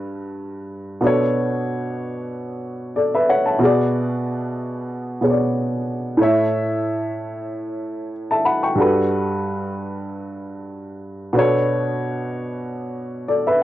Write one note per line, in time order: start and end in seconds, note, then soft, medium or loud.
0.00 0.98 G2 medium
0.00 0.99 G3 medium
0.00 1.00 F#4 medium
0.00 1.00 A4 medium
0.00 1.01 B4 medium
1.01 3.56 B2 medium
1.01 3.57 B3 medium
1.01 3.58 D4 medium
1.05 2.94 A4 medium
1.05 2.95 C#5 medium
2.96 3.14 A4 medium
2.96 3.13 D5 medium
3.15 3.29 B4 medium
3.15 3.28 E5 medium
3.29 3.46 C#5 medium
3.29 3.46 F#5 medium
3.46 3.77 E5 medium
3.46 3.77 A5 medium
3.59 5.18 B2 medium
3.59 5.19 B3 medium
3.59 5.20 F#4 medium
3.63 5.21 G#4 medium
3.63 5.21 D5 medium
5.21 6.19 B2 medium
5.21 6.19 B3 medium
5.21 6.19 F#4 medium
5.21 6.20 G#4 soft
5.21 5.30 C#5 soft
5.30 6.23 D5 medium
6.17 8.72 A2 medium
6.17 8.73 A3 medium
6.17 8.74 E4 medium
6.21 8.75 C#5 medium
6.21 8.11 E5 loud
8.31 8.45 E5 medium
8.31 8.45 A5 medium
8.45 8.62 F#5 medium
8.45 8.62 B5 medium
8.63 8.94 G5 medium
8.63 8.94 C#6 medium
8.75 11.31 G2 medium
8.75 11.31 G3 medium
8.75 11.32 F#4 medium
8.80 11.33 A4 medium
8.80 11.34 B4 medium
11.33 13.63 B2 medium
11.33 13.63 B3 medium
11.33 13.63 D4 medium
11.37 13.26 A4 medium
11.37 13.27 C#5 medium
13.28 13.46 A4 medium
13.28 13.46 D5 medium
13.47 13.61 B4 medium
13.47 13.61 E5 medium